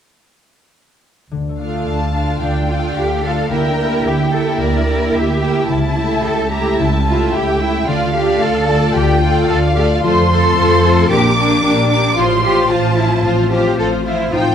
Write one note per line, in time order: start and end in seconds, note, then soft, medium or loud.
1.31 1.80 D2 soft
1.31 2.41 D3 soft
1.49 2.60 A3 soft
1.59 2.12 A3 soft
1.59 2.12 D4 soft
1.59 2.13 F4 soft
1.59 2.13 F5 soft
1.68 2.04 A4 soft
1.86 2.36 D2 soft
1.86 2.95 F5 soft
1.86 2.38 A5 medium
2.05 2.77 A4 soft
2.13 2.67 A3 soft
2.13 2.68 D4 soft
2.13 2.68 F4 soft
2.13 2.68 F5 soft
2.24 3.32 F4 soft
2.41 2.90 D2 soft
2.41 3.50 D3 soft
2.41 2.67 D4 soft
2.41 3.22 G5 medium
2.61 3.54 A3 soft
2.69 3.22 A3 soft
2.69 3.22 D4 soft
2.69 2.96 F4 soft
2.69 3.22 F4 soft
2.69 3.23 F5 soft
2.78 3.14 A4 soft
2.97 3.45 D2 soft
2.97 3.24 G4 soft
2.97 3.54 F5 soft
3.15 3.54 A4 soft
3.24 3.51 A3 soft
3.24 3.51 D4 soft
3.24 3.51 F4 soft
3.24 3.52 A4 soft
3.24 3.51 F5 soft
3.34 3.54 F4 soft
3.51 4.00 D2 soft
3.51 4.60 D3 soft
3.51 3.78 A#3 soft
3.51 3.77 E4 soft
3.51 3.78 G4 soft
3.51 4.06 A#4 soft
3.51 3.78 E5 soft
3.51 4.05 G5 medium
3.70 4.77 D4 soft
3.79 4.32 A#3 soft
3.79 4.32 E4 soft
3.79 4.32 G4 soft
3.79 4.31 E5 soft
3.87 4.41 A#4 soft
4.05 4.54 D2 soft
4.05 4.34 G4 soft
4.05 5.13 G5 soft
4.05 4.59 G5 medium
4.24 5.31 E5 soft
4.33 4.86 A#3 soft
4.33 4.86 E4 soft
4.33 4.86 G4 soft
4.33 4.61 A4 soft
4.33 4.86 E5 soft
4.43 4.95 A#4 soft
4.59 5.08 D2 soft
4.59 5.72 D3 soft
4.59 5.14 A#4 soft
4.59 5.14 D5 medium
4.78 5.72 D4 soft
4.87 5.42 A#3 soft
4.87 5.41 E4 soft
4.87 5.41 G4 soft
4.87 5.41 E5 soft
4.96 5.49 A#4 soft
5.13 5.63 D2 soft
5.13 5.70 G4 medium
5.13 5.42 E5 medium
5.13 6.22 G5 soft
5.33 6.41 E5 soft
5.42 5.69 A#3 soft
5.42 5.69 E4 soft
5.42 5.69 G4 soft
5.42 5.69 E5 soft
5.42 5.70 G5 medium
5.51 5.72 A#4 soft
5.69 6.18 C#2 soft
5.69 6.77 C#3 soft
5.69 6.24 E4 medium
5.69 6.51 A5 medium
5.87 6.96 C#4 soft
5.96 6.50 A3 soft
5.96 6.50 E4 soft
5.96 6.50 G4 soft
5.96 6.51 E5 soft
6.06 6.59 A4 soft
6.24 6.73 C#2 medium
6.24 6.52 A4 soft
6.24 7.32 G5 soft
6.42 7.50 E5 soft
6.52 7.05 A3 soft
6.52 7.05 E4 soft
6.52 6.79 G4 soft
6.52 7.06 G4 soft
6.52 7.06 E5 soft
6.52 6.79 A#5 medium
6.60 7.14 A4 soft
6.79 7.27 C#2 medium
6.79 7.90 C#3 soft
6.79 6.87 E4 soft
6.79 7.34 A5 medium
6.97 7.90 C#4 soft
7.06 7.60 A3 soft
7.06 7.60 E4 soft
7.06 7.33 F4 soft
7.06 7.61 G4 soft
7.06 7.60 E5 soft
7.15 7.68 A4 soft
7.33 7.82 C#2 medium
7.33 7.61 G4 medium
7.33 7.90 G5 soft
7.33 7.87 G5 medium
7.52 7.90 E5 soft
7.61 7.87 A3 soft
7.61 7.88 E4 medium
7.61 7.88 E4 soft
7.61 7.88 G4 soft
7.61 7.88 E5 soft
7.69 8.22 A4 soft
7.88 8.36 D2 medium
7.88 8.94 D3 soft
7.88 8.13 A3 soft
7.88 8.15 F4 medium
7.88 8.13 F4 soft
7.88 8.14 A4 soft
7.88 8.14 D5 soft
7.88 8.69 F5 medium
8.05 9.12 A3 soft
8.15 8.68 A3 soft
8.15 8.68 F4 soft
8.15 8.42 G4 medium
8.15 8.68 A4 soft
8.15 8.68 D5 soft
8.23 8.76 A4 soft
8.41 8.89 D2 medium
8.41 8.95 A4 medium
8.41 9.48 F5 soft
8.59 9.65 D5 soft
8.69 9.21 A3 soft
8.69 9.21 F4 soft
8.69 9.20 A4 soft
8.69 9.20 D5 soft
8.69 8.95 A5 medium
8.77 9.29 A4 soft
8.95 9.42 D2 medium
8.95 10.06 D3 soft
8.95 9.22 G4 medium
8.95 9.49 G5 medium
9.13 11.13 A3 soft
9.21 9.74 A3 soft
9.21 9.74 F4 soft
9.21 9.49 F4 medium
9.21 9.75 A4 soft
9.21 9.75 D5 soft
9.30 9.85 A4 soft
9.48 9.98 D2 medium
9.48 9.57 A4 medium
9.48 10.04 F5 medium
9.48 10.56 F5 soft
9.67 10.06 D5 soft
9.75 10.02 A3 soft
9.75 10.02 F4 soft
9.75 9.85 G4 medium
9.75 10.03 A4 soft
9.75 10.04 D5 soft
9.86 10.39 A4 soft
10.03 10.52 F2 medium
10.03 11.13 F3 medium
10.03 10.30 A3 medium
10.03 10.30 F4 medium
10.03 10.13 F4 medium
10.03 10.29 A4 medium
10.03 10.30 C5 medium
10.03 11.09 C6 medium
10.22 11.13 C4 soft
10.31 10.56 A3 soft
10.31 10.56 F4 soft
10.31 10.55 A4 soft
10.31 11.09 A4 medium
10.31 10.55 C5 soft
10.40 10.92 A4 soft
10.57 11.05 F2 medium
10.57 10.82 A3 soft
10.57 10.83 F4 soft
10.57 10.83 A4 medium
10.57 10.83 C5 medium
10.57 11.13 F5 soft
10.76 11.13 C5 soft
10.84 11.10 A3 soft
10.84 11.10 F4 soft
10.84 11.10 A4 soft
10.84 11.10 C5 soft
10.94 11.13 A4 soft
11.09 11.58 A#1 medium
11.09 12.19 A#2 medium
11.09 11.36 A#3 soft
11.09 11.36 D4 medium
11.09 11.35 G4 medium
11.09 11.38 G4 medium
11.09 11.35 A#4 medium
11.09 11.89 D6 medium
11.28 12.19 A#3 soft
11.36 11.62 A#3 medium
11.36 11.63 D4 medium
11.36 12.15 D4 medium
11.36 11.62 G4 soft
11.36 11.62 A#4 soft
11.47 11.99 G4 soft
11.63 12.11 A#1 medium
11.63 11.88 A#3 soft
11.63 11.89 D4 soft
11.63 11.90 G4 soft
11.63 11.89 A#4 medium
11.63 12.19 D5 medium
11.83 12.20 A#4 soft
11.90 12.16 A#3 soft
11.90 12.16 D4 soft
11.90 12.17 G4 soft
11.90 12.16 A#4 soft
11.90 12.16 D6 medium
12.00 12.20 G4 soft
12.16 12.64 A1 medium
12.16 13.24 A2 medium
12.16 12.42 F3 medium
12.16 12.42 F4 medium
12.16 12.25 F4 medium
12.16 12.42 C5 medium
12.16 12.70 C6 medium
12.35 13.42 A3 soft
12.43 12.69 F3 soft
12.43 12.69 F4 medium
12.43 12.69 F4 soft
12.43 12.70 G4 medium
12.43 12.69 C5 soft
12.53 12.87 F4 soft
12.70 13.19 A1 medium
12.70 12.96 F3 soft
12.70 12.96 F4 medium
12.70 12.97 F4 medium
12.70 12.98 F4 medium
12.70 12.97 C5 medium
12.70 13.76 C5 soft
12.70 13.52 A5 medium
12.89 13.59 F4 soft
12.97 13.23 F3 soft
12.97 13.25 E4 medium
12.97 13.24 F4 soft
12.97 13.22 F4 soft
12.97 13.23 C5 soft
13.07 14.13 C4 soft
13.24 13.73 A1 medium
13.24 14.31 A2 soft
13.24 13.51 F3 medium
13.24 13.50 F4 medium
13.24 13.52 F4 medium
13.24 13.52 F4 soft
13.24 13.50 C5 medium
13.43 14.50 A3 soft
13.52 13.78 F3 soft
13.52 13.77 F4 soft
13.52 13.78 F4 soft
13.52 13.79 G4 medium
13.52 13.77 C5 soft
13.61 13.95 F4 soft
13.77 14.27 A1 medium
13.77 14.05 F3 soft
13.77 14.04 F4 soft
13.77 14.05 F4 soft
13.77 13.87 A4 medium
13.77 14.55 C5 soft
13.77 14.04 C5 soft
13.96 14.55 F4 soft
14.05 14.31 F3 soft
14.05 14.33 E4 medium
14.05 14.31 F4 soft
14.05 14.32 F4 soft
14.05 14.31 C5 soft
14.14 14.55 C4 soft
14.32 14.55 A1 medium
14.32 14.55 A2 medium
14.32 14.55 F3 soft
14.32 14.55 D#4 soft
14.32 14.55 F4 medium
14.32 14.55 F4 soft
14.32 14.55 C5 soft
14.32 14.55 G5 medium
14.51 14.55 A3 soft